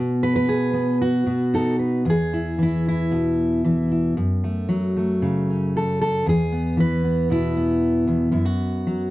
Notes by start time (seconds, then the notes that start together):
Already playing: B2 B3
0.23 B4
0.36 B4
0.49 G#4
0.73 B3
1.01 F#4
1.27 B2
1.54 D#4 A4
1.79 B4
2.05 E2
2.10 G#4
2.33 E4
2.58 E3
2.63 E4
2.88 E4
3.11 B2
3.65 E3
3.92 E4
4.17 F#2
4.44 A3
4.69 F#3
4.97 A3
5.22 C#3
5.50 C#4
5.77 A4
6.02 A4
6.26 E2 G#4
6.52 B3
6.77 E3 B4
7.04 B3
7.30 B2 E4
7.57 B3
8.07 E2
8.32 F#2 E4
8.45 F#4
8.87 F#3